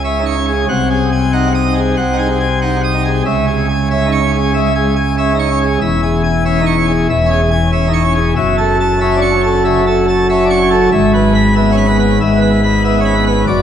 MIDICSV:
0, 0, Header, 1, 2, 480
1, 0, Start_track
1, 0, Tempo, 639659
1, 522, Time_signature, 4, 2, 24, 8
1, 10220, End_track
2, 0, Start_track
2, 0, Title_t, "Pipe organ"
2, 0, Program_c, 0, 19
2, 0, Note_on_c, 0, 37, 78
2, 0, Note_on_c, 0, 49, 73
2, 32, Note_on_c, 0, 76, 63
2, 33, Note_on_c, 0, 61, 60
2, 143, Note_off_c, 0, 61, 0
2, 151, Note_on_c, 0, 63, 48
2, 178, Note_off_c, 0, 76, 0
2, 195, Note_on_c, 0, 85, 61
2, 257, Note_off_c, 0, 63, 0
2, 278, Note_on_c, 0, 61, 61
2, 341, Note_off_c, 0, 85, 0
2, 357, Note_on_c, 0, 68, 63
2, 387, Note_off_c, 0, 61, 0
2, 490, Note_off_c, 0, 49, 0
2, 491, Note_off_c, 0, 37, 0
2, 496, Note_off_c, 0, 68, 0
2, 518, Note_on_c, 0, 36, 80
2, 518, Note_on_c, 0, 48, 78
2, 518, Note_on_c, 0, 78, 67
2, 664, Note_off_c, 0, 78, 0
2, 679, Note_on_c, 0, 68, 64
2, 824, Note_off_c, 0, 68, 0
2, 843, Note_on_c, 0, 80, 69
2, 986, Note_off_c, 0, 80, 0
2, 997, Note_on_c, 0, 78, 68
2, 998, Note_on_c, 0, 63, 63
2, 1107, Note_off_c, 0, 63, 0
2, 1142, Note_off_c, 0, 78, 0
2, 1161, Note_on_c, 0, 87, 82
2, 1236, Note_on_c, 0, 63, 64
2, 1305, Note_off_c, 0, 87, 0
2, 1318, Note_on_c, 0, 68, 63
2, 1347, Note_off_c, 0, 63, 0
2, 1462, Note_off_c, 0, 36, 0
2, 1464, Note_off_c, 0, 48, 0
2, 1464, Note_off_c, 0, 68, 0
2, 1477, Note_on_c, 0, 36, 69
2, 1479, Note_on_c, 0, 48, 66
2, 1479, Note_on_c, 0, 78, 72
2, 1600, Note_on_c, 0, 63, 64
2, 1624, Note_off_c, 0, 78, 0
2, 1641, Note_on_c, 0, 68, 65
2, 1710, Note_off_c, 0, 63, 0
2, 1786, Note_off_c, 0, 68, 0
2, 1801, Note_on_c, 0, 80, 66
2, 1946, Note_off_c, 0, 80, 0
2, 1966, Note_on_c, 0, 63, 64
2, 1966, Note_on_c, 0, 78, 62
2, 2073, Note_off_c, 0, 63, 0
2, 2109, Note_off_c, 0, 78, 0
2, 2129, Note_on_c, 0, 87, 65
2, 2209, Note_on_c, 0, 63, 66
2, 2271, Note_off_c, 0, 87, 0
2, 2284, Note_on_c, 0, 68, 65
2, 2316, Note_off_c, 0, 63, 0
2, 2414, Note_off_c, 0, 36, 0
2, 2415, Note_off_c, 0, 48, 0
2, 2422, Note_off_c, 0, 68, 0
2, 2442, Note_on_c, 0, 49, 81
2, 2443, Note_on_c, 0, 37, 78
2, 2443, Note_on_c, 0, 76, 71
2, 2589, Note_off_c, 0, 76, 0
2, 2608, Note_on_c, 0, 68, 66
2, 2751, Note_off_c, 0, 68, 0
2, 2768, Note_on_c, 0, 80, 69
2, 2911, Note_off_c, 0, 80, 0
2, 2933, Note_on_c, 0, 76, 68
2, 2934, Note_on_c, 0, 61, 64
2, 3039, Note_off_c, 0, 61, 0
2, 3049, Note_on_c, 0, 63, 53
2, 3073, Note_off_c, 0, 76, 0
2, 3094, Note_on_c, 0, 85, 91
2, 3150, Note_off_c, 0, 63, 0
2, 3168, Note_on_c, 0, 61, 67
2, 3233, Note_off_c, 0, 85, 0
2, 3250, Note_on_c, 0, 68, 68
2, 3274, Note_off_c, 0, 61, 0
2, 3391, Note_off_c, 0, 68, 0
2, 3404, Note_on_c, 0, 56, 68
2, 3407, Note_on_c, 0, 76, 72
2, 3512, Note_off_c, 0, 56, 0
2, 3549, Note_off_c, 0, 76, 0
2, 3563, Note_on_c, 0, 68, 71
2, 3707, Note_off_c, 0, 68, 0
2, 3722, Note_on_c, 0, 80, 69
2, 3867, Note_off_c, 0, 80, 0
2, 3884, Note_on_c, 0, 61, 63
2, 3886, Note_on_c, 0, 76, 66
2, 3992, Note_off_c, 0, 61, 0
2, 4009, Note_on_c, 0, 63, 55
2, 4029, Note_off_c, 0, 76, 0
2, 4047, Note_on_c, 0, 85, 65
2, 4110, Note_off_c, 0, 63, 0
2, 4123, Note_on_c, 0, 61, 66
2, 4190, Note_off_c, 0, 85, 0
2, 4208, Note_on_c, 0, 68, 71
2, 4231, Note_off_c, 0, 61, 0
2, 4333, Note_off_c, 0, 49, 0
2, 4334, Note_off_c, 0, 37, 0
2, 4343, Note_off_c, 0, 68, 0
2, 4363, Note_on_c, 0, 76, 78
2, 4365, Note_on_c, 0, 28, 86
2, 4366, Note_on_c, 0, 40, 84
2, 4507, Note_off_c, 0, 76, 0
2, 4524, Note_on_c, 0, 68, 67
2, 4667, Note_off_c, 0, 68, 0
2, 4682, Note_on_c, 0, 80, 74
2, 4825, Note_off_c, 0, 80, 0
2, 4841, Note_on_c, 0, 61, 68
2, 4842, Note_on_c, 0, 76, 76
2, 4949, Note_off_c, 0, 61, 0
2, 4959, Note_on_c, 0, 63, 58
2, 4986, Note_off_c, 0, 76, 0
2, 4999, Note_on_c, 0, 85, 92
2, 5063, Note_off_c, 0, 63, 0
2, 5080, Note_on_c, 0, 61, 70
2, 5144, Note_off_c, 0, 85, 0
2, 5159, Note_on_c, 0, 68, 70
2, 5189, Note_off_c, 0, 61, 0
2, 5304, Note_off_c, 0, 68, 0
2, 5310, Note_off_c, 0, 28, 0
2, 5310, Note_off_c, 0, 40, 0
2, 5325, Note_on_c, 0, 28, 72
2, 5325, Note_on_c, 0, 40, 73
2, 5325, Note_on_c, 0, 76, 72
2, 5445, Note_on_c, 0, 61, 67
2, 5467, Note_off_c, 0, 76, 0
2, 5481, Note_on_c, 0, 68, 68
2, 5551, Note_off_c, 0, 61, 0
2, 5624, Note_off_c, 0, 68, 0
2, 5636, Note_on_c, 0, 80, 74
2, 5781, Note_off_c, 0, 80, 0
2, 5796, Note_on_c, 0, 61, 65
2, 5797, Note_on_c, 0, 76, 75
2, 5905, Note_off_c, 0, 61, 0
2, 5911, Note_on_c, 0, 63, 60
2, 5941, Note_off_c, 0, 76, 0
2, 5954, Note_on_c, 0, 85, 66
2, 6017, Note_off_c, 0, 63, 0
2, 6031, Note_on_c, 0, 61, 71
2, 6099, Note_off_c, 0, 85, 0
2, 6116, Note_on_c, 0, 68, 67
2, 6142, Note_off_c, 0, 61, 0
2, 6252, Note_off_c, 0, 28, 0
2, 6252, Note_off_c, 0, 40, 0
2, 6253, Note_off_c, 0, 68, 0
2, 6274, Note_on_c, 0, 76, 80
2, 6275, Note_on_c, 0, 30, 87
2, 6275, Note_on_c, 0, 42, 90
2, 6419, Note_off_c, 0, 76, 0
2, 6435, Note_on_c, 0, 69, 73
2, 6580, Note_off_c, 0, 69, 0
2, 6604, Note_on_c, 0, 81, 78
2, 6745, Note_off_c, 0, 81, 0
2, 6758, Note_on_c, 0, 76, 78
2, 6759, Note_on_c, 0, 61, 71
2, 6866, Note_off_c, 0, 61, 0
2, 6879, Note_on_c, 0, 62, 58
2, 6901, Note_off_c, 0, 76, 0
2, 6916, Note_on_c, 0, 85, 99
2, 6981, Note_off_c, 0, 62, 0
2, 7003, Note_on_c, 0, 61, 69
2, 7061, Note_off_c, 0, 85, 0
2, 7081, Note_on_c, 0, 69, 72
2, 7108, Note_off_c, 0, 61, 0
2, 7224, Note_off_c, 0, 69, 0
2, 7239, Note_on_c, 0, 76, 76
2, 7241, Note_on_c, 0, 49, 70
2, 7348, Note_off_c, 0, 49, 0
2, 7383, Note_off_c, 0, 76, 0
2, 7404, Note_on_c, 0, 69, 74
2, 7545, Note_off_c, 0, 69, 0
2, 7564, Note_on_c, 0, 81, 81
2, 7704, Note_off_c, 0, 81, 0
2, 7724, Note_on_c, 0, 76, 78
2, 7727, Note_on_c, 0, 61, 68
2, 7830, Note_off_c, 0, 61, 0
2, 7842, Note_on_c, 0, 62, 58
2, 7864, Note_off_c, 0, 76, 0
2, 7881, Note_on_c, 0, 85, 73
2, 7942, Note_off_c, 0, 62, 0
2, 7959, Note_on_c, 0, 61, 70
2, 8022, Note_off_c, 0, 85, 0
2, 8035, Note_on_c, 0, 69, 76
2, 8065, Note_off_c, 0, 61, 0
2, 8165, Note_off_c, 0, 30, 0
2, 8165, Note_off_c, 0, 42, 0
2, 8172, Note_off_c, 0, 69, 0
2, 8196, Note_on_c, 0, 76, 82
2, 8197, Note_on_c, 0, 44, 91
2, 8199, Note_on_c, 0, 32, 92
2, 8339, Note_off_c, 0, 76, 0
2, 8356, Note_on_c, 0, 71, 70
2, 8499, Note_off_c, 0, 71, 0
2, 8515, Note_on_c, 0, 83, 101
2, 8658, Note_off_c, 0, 83, 0
2, 8672, Note_on_c, 0, 76, 73
2, 8673, Note_on_c, 0, 59, 73
2, 8781, Note_off_c, 0, 59, 0
2, 8793, Note_on_c, 0, 61, 60
2, 8816, Note_off_c, 0, 76, 0
2, 8835, Note_on_c, 0, 83, 73
2, 8895, Note_off_c, 0, 61, 0
2, 8918, Note_on_c, 0, 59, 71
2, 8977, Note_off_c, 0, 83, 0
2, 8998, Note_on_c, 0, 71, 72
2, 9023, Note_off_c, 0, 59, 0
2, 9139, Note_off_c, 0, 71, 0
2, 9146, Note_off_c, 0, 44, 0
2, 9147, Note_off_c, 0, 32, 0
2, 9161, Note_on_c, 0, 44, 77
2, 9161, Note_on_c, 0, 76, 77
2, 9162, Note_on_c, 0, 32, 76
2, 9277, Note_on_c, 0, 59, 73
2, 9300, Note_off_c, 0, 76, 0
2, 9316, Note_on_c, 0, 71, 74
2, 9382, Note_off_c, 0, 59, 0
2, 9456, Note_off_c, 0, 71, 0
2, 9482, Note_on_c, 0, 83, 74
2, 9620, Note_off_c, 0, 83, 0
2, 9637, Note_on_c, 0, 59, 70
2, 9638, Note_on_c, 0, 76, 74
2, 9741, Note_off_c, 0, 59, 0
2, 9755, Note_on_c, 0, 61, 58
2, 9777, Note_off_c, 0, 76, 0
2, 9793, Note_on_c, 0, 83, 73
2, 9855, Note_off_c, 0, 61, 0
2, 9868, Note_on_c, 0, 59, 70
2, 9935, Note_off_c, 0, 83, 0
2, 9954, Note_on_c, 0, 71, 75
2, 9976, Note_off_c, 0, 59, 0
2, 10085, Note_off_c, 0, 44, 0
2, 10086, Note_off_c, 0, 32, 0
2, 10088, Note_off_c, 0, 71, 0
2, 10110, Note_on_c, 0, 74, 78
2, 10111, Note_on_c, 0, 30, 85
2, 10113, Note_on_c, 0, 42, 84
2, 10220, Note_off_c, 0, 30, 0
2, 10220, Note_off_c, 0, 42, 0
2, 10220, Note_off_c, 0, 74, 0
2, 10220, End_track
0, 0, End_of_file